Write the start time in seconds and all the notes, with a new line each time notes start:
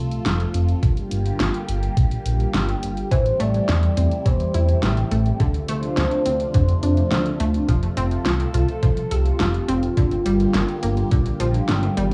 Already playing: C2 C3 F3 A3 F4 A4
0.11 closed hi-hat
0.26 F1, snare, closed hi-hat
0.40 closed hi-hat
0.54 F1, closed hi-hat
0.69 closed hi-hat
0.83 G1 D3 G3 A#3 G4, kick, closed hi-hat
0.97 closed hi-hat
1.11 G1, closed hi-hat
1.26 closed hi-hat
1.40 G1, snare, closed hi-hat
1.54 closed hi-hat
1.68 G1, closed hi-hat
1.83 closed hi-hat
1.97 A#1, kick, closed hi-hat
2.11 closed hi-hat
2.26 A#1, closed hi-hat
2.40 closed hi-hat
2.54 G1, snare, closed hi-hat
2.69 closed hi-hat
2.83 G1, closed hi-hat
2.97 closed hi-hat
3.11 A1 C3 E3 A3 E4 C5, kick, closed hi-hat
3.26 closed hi-hat
3.40 A1 A3 D5, closed hi-hat
3.54 closed hi-hat
3.68 E2 E3, snare, closed hi-hat
3.83 closed hi-hat
3.97 E2 C4, closed hi-hat
4.11 closed hi-hat
4.26 E2 E3 C5, kick, closed hi-hat
4.40 closed hi-hat
4.54 E2 E4, closed hi-hat
4.69 closed hi-hat
4.83 A1 E3 G4, snare, closed hi-hat
4.97 closed hi-hat
5.11 A1 A3, closed hi-hat
5.26 closed hi-hat
5.40 D2 D3 F3 D4 F4 A4, kick, closed hi-hat
5.54 closed hi-hat
5.68 D2 A3 C5, closed hi-hat
5.83 closed hi-hat
5.97 D2 D3, snare, closed hi-hat
6.11 closed hi-hat
6.26 D2 C4, closed hi-hat
6.40 closed hi-hat
6.54 F2 D3 C5, kick, closed hi-hat
6.69 closed hi-hat
6.83 F2 D4, closed hi-hat
6.97 closed hi-hat
7.11 D2 D3, snare, closed hi-hat
7.26 closed hi-hat
7.40 D2 A3, closed hi-hat
7.54 closed hi-hat
7.69 F1 F3 A4, kick, closed hi-hat
7.83 closed hi-hat
7.97 F1 C4, closed hi-hat
8.11 closed hi-hat
8.26 C2 F3, snare, closed hi-hat
8.40 closed hi-hat
8.54 C2 F4 A4, closed hi-hat
8.69 closed hi-hat
8.83 C2 F3, kick, closed hi-hat
8.97 closed hi-hat
9.11 C2 G4 A4, closed hi-hat
9.26 closed hi-hat
9.40 F1 F3, snare, closed hi-hat
9.54 closed hi-hat
9.68 F1 C4 F4, closed hi-hat
9.83 closed hi-hat
9.97 G1 D3 G3 A#3 F4 G4, kick, closed hi-hat
10.11 closed hi-hat
10.26 G1 G3, closed hi-hat
10.40 closed hi-hat
10.54 G1 D3, snare, closed hi-hat
10.68 closed hi-hat
10.83 G1 A#3, closed hi-hat
10.97 closed hi-hat
11.11 A#1 D3, kick, closed hi-hat
11.26 closed hi-hat
11.40 A#1 F3, closed hi-hat
11.54 closed hi-hat
11.69 G1 D3, snare, closed hi-hat, high tom
11.83 closed hi-hat, high tom
11.97 G1 G3, closed hi-hat, mid tom